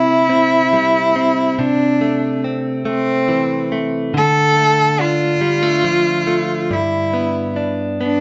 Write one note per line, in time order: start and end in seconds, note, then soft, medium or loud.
0.00 1.57 C3 medium
0.00 0.73 G3 medium
0.00 0.29 C4 soft
0.00 1.61 E4 loud
0.00 2.44 E4 medium
0.30 1.15 C4 medium
0.73 1.67 G3 medium
1.16 2.01 C4 medium
1.59 4.14 C3 medium
1.59 2.44 D4 medium
2.01 2.85 A3 medium
2.44 4.23 C4 medium
2.85 3.72 A3 medium
2.85 3.79 C4 loud
3.28 4.22 E3 medium
3.72 4.56 A3 medium
4.14 7.64 D3 medium
4.14 5.02 A4 loud
4.56 5.41 A3 medium
4.99 7.56 D4 medium
4.99 6.74 F4 loud
5.41 5.63 G3 medium
5.63 6.26 A3 medium
5.84 6.79 F3 medium
6.27 6.79 A3 medium
6.71 8.20 G2 medium
6.71 7.58 E4 medium
7.13 7.99 B3 medium
7.56 8.20 D4 medium
8.01 8.20 B3 medium
8.01 8.20 D4 loud